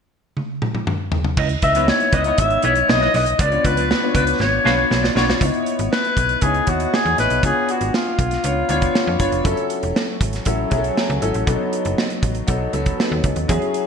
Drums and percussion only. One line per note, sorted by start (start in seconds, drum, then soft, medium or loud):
0.37 high tom medium
0.62 mid tom medium
0.75 mid tom medium
0.87 mid tom medium
1.12 floor tom medium
1.25 floor tom medium
1.37 kick loud
1.37 crash medium
1.49 closed hi-hat soft
1.62 kick medium
1.62 closed hi-hat medium
1.62 muted conga soft
1.75 closed hi-hat medium
1.75 high conga medium
1.88 snare medium
1.88 muted conga soft
2.00 closed hi-hat soft
2.13 kick medium
2.13 closed hi-hat medium
2.13 muted conga soft
2.13 low conga medium
2.24 closed hi-hat medium
2.38 kick medium
2.38 closed hi-hat medium
2.38 muted conga soft
2.38 low conga medium
2.50 closed hi-hat soft
2.62 closed hi-hat medium
2.62 high conga medium
2.75 closed hi-hat soft
2.75 high conga medium
2.89 snare loud
2.89 muted conga soft
2.89 high conga medium
3.02 snare soft
3.14 snare soft
3.14 open hi-hat medium
3.14 high conga soft
3.26 closed hi-hat medium
3.26 low conga medium
3.39 kick loud
3.39 closed hi-hat medium
3.52 closed hi-hat soft
3.65 kick medium
3.65 closed hi-hat medium
3.65 muted conga soft
3.77 closed hi-hat medium
3.77 high conga medium
3.90 snare loud
3.90 muted conga soft
4.15 kick medium
4.15 closed hi-hat medium
4.15 muted conga soft
4.15 low conga medium
4.27 closed hi-hat soft
4.40 snare soft
4.40 muted conga soft
4.40 low conga medium
4.65 snare medium
4.65 muted conga soft
4.65 high conga medium
4.79 high conga medium
4.90 snare medium
4.90 muted conga soft
4.90 high conga medium
5.04 snare medium
5.16 snare medium
5.16 high conga soft
5.29 snare medium
5.29 low conga medium
5.41 kick loud
5.41 closed hi-hat medium
5.54 closed hi-hat soft
5.66 closed hi-hat medium
5.79 closed hi-hat medium
5.93 snare medium
6.04 closed hi-hat soft
6.17 kick medium
6.17 closed hi-hat medium
6.29 closed hi-hat soft
6.41 kick medium
6.41 closed hi-hat medium
6.54 closed hi-hat soft
6.67 kick medium
6.67 closed hi-hat medium
6.80 closed hi-hat soft
6.94 snare medium
7.06 closed hi-hat soft
7.18 snare soft
7.18 closed hi-hat medium
7.30 closed hi-hat soft
7.43 kick medium
7.43 closed hi-hat medium
7.69 closed hi-hat medium
7.81 closed hi-hat medium
7.94 snare medium
8.19 kick medium
8.19 closed hi-hat medium
8.31 snare soft
8.31 closed hi-hat soft
8.44 closed hi-hat medium
8.69 closed hi-hat medium
8.82 kick medium
8.82 closed hi-hat soft
8.95 snare medium
9.20 kick medium
9.20 closed hi-hat medium
9.32 closed hi-hat soft
9.45 kick loud
9.45 closed hi-hat medium
9.57 closed hi-hat soft
9.70 closed hi-hat medium
9.83 closed hi-hat soft
9.96 snare medium
10.21 kick medium
10.21 closed hi-hat medium
10.33 snare soft
10.33 closed hi-hat soft
10.45 kick medium
10.45 closed hi-hat medium
10.71 kick medium
10.71 closed hi-hat medium
10.84 closed hi-hat soft
10.97 snare medium
11.10 closed hi-hat soft
11.22 closed hi-hat medium
11.34 closed hi-hat soft
11.47 kick loud
11.47 closed hi-hat medium
11.73 closed hi-hat medium
11.85 closed hi-hat soft
11.98 snare medium
12.10 closed hi-hat soft
12.23 kick medium
12.23 closed hi-hat medium
12.35 closed hi-hat soft
12.48 kick medium
12.48 closed hi-hat medium
12.73 closed hi-hat medium
12.86 kick medium
12.86 closed hi-hat soft
13.00 snare medium
13.24 kick medium
13.24 closed hi-hat medium
13.36 closed hi-hat soft
13.49 kick medium
13.49 closed hi-hat medium
13.62 closed hi-hat soft
13.74 closed hi-hat medium